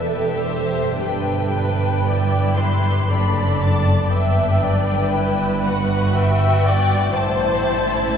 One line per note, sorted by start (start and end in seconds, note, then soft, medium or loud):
0.00 0.95 E1 soft
0.00 0.96 E2 soft
0.00 0.99 G4 soft
0.00 0.99 A4 soft
0.00 0.46 B4 soft
0.00 0.98 E5 medium
0.45 0.98 C5 soft
0.98 3.05 G1 soft
0.98 3.05 G2 soft
0.98 2.02 D4 soft
0.98 1.51 G4 soft
0.98 1.51 B4 soft
0.98 2.55 G5 medium
1.52 2.04 B4 soft
1.52 2.05 B4 soft
2.04 3.09 E4 soft
2.04 2.56 B4 soft
2.04 2.58 D5 soft
2.57 3.09 G4 soft
2.57 3.09 B4 soft
2.57 3.09 C6 medium
3.09 4.11 F#1 soft
3.09 4.11 F#2 soft
3.09 4.10 D4 soft
3.09 4.12 A4 soft
3.09 4.11 D5 soft
3.09 3.60 B5 medium
3.60 4.11 A5 medium
4.11 7.12 G1 soft
4.11 7.13 G2 soft
4.11 5.12 D4 soft
4.11 6.11 B4 soft
4.11 4.62 E5 soft
4.11 5.62 G5 medium
4.62 5.14 D5 medium
5.13 5.64 E4 soft
5.13 6.14 B4 medium
5.64 7.17 F#4 soft
5.64 6.14 F#5 medium
6.15 6.65 B4 soft
6.15 6.66 E5 medium
6.15 7.16 G5 medium
6.65 7.16 D5 medium
6.65 7.17 D5 soft
7.14 8.18 A1 soft
7.14 8.18 A2 medium
7.14 8.18 E4 soft
7.14 8.15 C5 soft
7.14 8.18 C5 medium
7.14 8.18 A5 medium